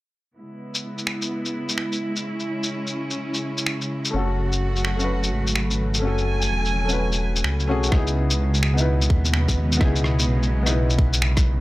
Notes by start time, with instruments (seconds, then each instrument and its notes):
0.37 string section C#3 G#3 B3 E4
0.75 shaker
0.98 shaker
1.07 finger snap
1.22 shaker
1.45 shaker
1.69 shaker
1.78 finger snap
1.92 shaker
2.16 shaker
2.24 string section C#4
2.40 shaker
2.63 shaker
2.87 shaker
3.10 shaker
3.34 shaker
3.58 shaker
3.66 finger snap
3.81 shaker
4.05 shaker
4.10 detuned saw bass F#1, string section F#3 A3 F#4, felt piano A3 C#4
4.16 felt piano F#4 A4
4.52 shaker
4.76 shaker
4.85 finger snap
4.96 felt piano A3 C#4, shaker
5.02 felt piano F#4 B4
5.23 shaker
5.32 detuned saw bass G#1
5.47 shaker
5.56 finger snap
5.71 shaker
5.94 shaker
5.99 detuned saw bass F#1, felt piano A3 C#4, string section G#5
6.05 felt piano F#4 A4
6.18 shaker
6.42 shaker
6.51 detuned saw bass E1
6.65 shaker
6.85 felt piano A3 C#4
6.89 felt piano F#4 B4, shaker
7.12 shaker
7.36 shaker
7.44 detuned saw bass C#2, finger snap
7.60 shaker
7.67 detuned saw bass B1, felt piano A3 C#4 F#4 G#4
7.83 shaker
7.88 detuned saw bass C#2, string section B2 C#3 G#3 B3, felt piano B3 D#4, kick, cross-stick
7.94 felt piano E4 G#4
8.07 shaker
8.30 shaker
8.54 shaker
8.63 finger snap
8.74 felt piano B3 D#4, shaker
8.79 felt piano E4 B4
9.02 shaker
9.10 detuned saw bass D#2, kick
9.25 shaker
9.34 finger snap
9.48 kick, shaker
9.72 shaker
9.77 felt piano B3 D#4, kick, cross-stick
9.81 detuned saw bass C#2, felt piano E4 G#4
9.96 shaker
10.04 cross-stick
10.19 shaker
10.28 detuned saw bass B1
10.43 shaker
10.63 felt piano B3 D#4, cross-stick, shaker
10.68 felt piano E4 B4
10.90 shaker
10.99 kick
11.13 shaker
11.22 finger snap
11.37 kick, cross-stick, shaker
11.46 detuned saw bass B1